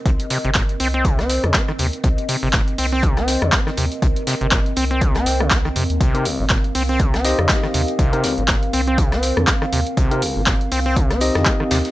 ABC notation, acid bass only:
X:1
M:4/4
L:1/16
Q:"Swing 16ths" 1/4=121
K:Cm
V:1 name="Acid bass" clef=bass
C, z C, C, B,, z C C C, C2 C, C E, C, z | C, z C, C, B,, z C C C, C2 C, C E, C, z | C, z C, C, B,, z C C C, C2 C, C E, C, z | C,2 C,, C, B,, z C C C, C2 C, C E, C, z |
C,2 C,, C, B,, z C C C, C2 C, C E, C, z | C,2 C,, C, B,, z C C C, C2 C, C E, C, z |]